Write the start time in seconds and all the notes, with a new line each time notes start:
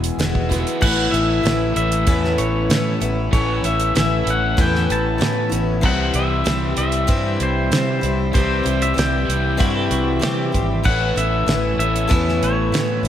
Already playing: E2 B2 E3 G#3 B3 E4 F#4 G#4 G#5 E6
0.04 closed hi-hat
0.18 E1 G#3 B3 E4 F#4, snare, closed hi-hat
0.35 kick
0.49 E2 B2 E3 G#3 B3 E4 F#4, kick, closed hi-hat
0.53 snare
0.67 closed hi-hat
0.80 A1 A2 E3 A3 B3 C#4 E4 A4 C#5 F#5 B5, kick, crash
1.11 A1 B3 C#4 E4 E5, closed hi-hat
1.43 A1 E3 B3 C#4 E4, snare, closed hi-hat
1.74 A1 A2 E3 A3 C#4 E4 E5, closed hi-hat
1.92 closed hi-hat
2.07 E2 A2 E3 B3 C#4 E4, kick, closed hi-hat
2.24 snare
2.38 A1 C#5, closed hi-hat
2.69 A2 E3 B3 C#4 E4, snare, closed hi-hat
3.00 A1 B3 C#4 E4, closed hi-hat
3.31 A1 A2 E3 A3 B3 C#4 E4 C#5, kick, closed hi-hat
3.63 A1 B3 C#4 E4 E5, closed hi-hat
3.80 closed hi-hat
3.95 A1 E3 B3 C#4 E4 E5, snare, closed hi-hat
4.24 A1 A2 E3 A3 C#4 E4, closed hi-hat
4.30 F#5
4.57 E2 A2 E3 B3 C#4 E4, kick, closed hi-hat
4.61 G5
4.75 snare
4.90 A1 A5, closed hi-hat
5.18 A2 E3 B3 C#4 E4, snare, closed hi-hat
5.50 A1 B3 C#4 E4, closed hi-hat
5.81 C2 C3 E3 G3 C4 E4 E5 C6, kick, crash
5.85 E4 F#5
6.14 C2 G3 C4 E4 E5, closed hi-hat
6.44 C2 E3 G3 C4 E4, snare, closed hi-hat
6.76 C2 C3 E3 G3 C4 E4 E5, closed hi-hat
6.92 closed hi-hat
7.07 G2 C3 E3 G3 C4 E4, kick, closed hi-hat
7.40 C2 C5, closed hi-hat
7.71 C3 E3 G3 C4 E4, snare, closed hi-hat
8.01 C2 G3 C4 E4, closed hi-hat
8.32 C2 C3 E3 G3 C4 E4 C5 D6, kick, closed hi-hat
8.63 C2 G3 C4 E4, closed hi-hat
8.82 E5, closed hi-hat
8.94 C2 E3 G3 C4 E4, closed hi-hat
8.99 G5, snare
9.25 C2 C3 E3 G3 C4 E4
9.30 closed hi-hat
9.57 G2 C3 E3 G3 C4 E4 F#4, kick, closed hi-hat
9.77 A4
9.91 C2 F#4, closed hi-hat
10.19 C3 E3 G3 C4 E4, snare, closed hi-hat
10.24 G4
10.52 G#1 G3 C4 E4, kick, closed hi-hat
10.83 A1 A2 E3 A3 B3 C#4 E4 F#5, kick, crash
10.88 A4 C#5 B5
11.16 A1 B3 C#4 E4 E5, closed hi-hat
11.46 A1 E3 B3 C#4 E4, snare, closed hi-hat
11.77 A1 A2 E3 A3 C#4 E4 E5, closed hi-hat
11.96 closed hi-hat
12.08 E2 A2 E3 B3 C#4 E4, kick, closed hi-hat
12.28 snare
12.42 A1 C#5, closed hi-hat
12.72 A2 E3 B3 C#4 E4, snare, closed hi-hat
13.03 A1 C#4 E4, closed hi-hat